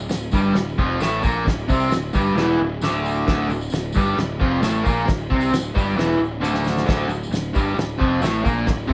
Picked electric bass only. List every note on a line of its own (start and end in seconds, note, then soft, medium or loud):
0.09 0.31 D1 medium
0.32 0.54 G1 medium
0.55 0.76 D1 medium
0.79 0.99 F1 medium
1.02 1.23 A1 loud
1.25 1.45 A#1 medium
1.46 1.67 D1 medium
1.70 1.89 C2 loud
1.89 2.11 D1 medium
2.15 2.33 G1 loud
2.34 2.56 E1 medium
2.60 2.81 D1 medium
2.83 3.25 D1 medium
3.28 3.49 D1 medium
3.49 3.71 D1 medium
3.71 3.93 D1 medium
3.96 4.17 G1 medium
4.17 4.39 D1 medium
4.41 4.62 F1 loud
4.63 4.84 A1 medium
4.86 5.07 A#1 medium
5.09 5.29 D1 medium
5.31 5.52 C2 medium
5.52 5.74 D1 medium
5.75 5.96 G1 medium
5.97 6.18 E1 medium
6.20 6.40 D1 medium
6.41 6.84 D1 loud
6.89 7.06 D1 medium
7.07 7.29 D1 medium
7.30 7.52 D1 medium
7.56 7.75 G1 medium
7.76 7.98 D1 medium
8.01 8.21 F1 medium
8.22 8.43 A1 loud
8.46 8.66 A#1 medium
8.68 8.89 D1 medium
8.90 8.93 C2 loud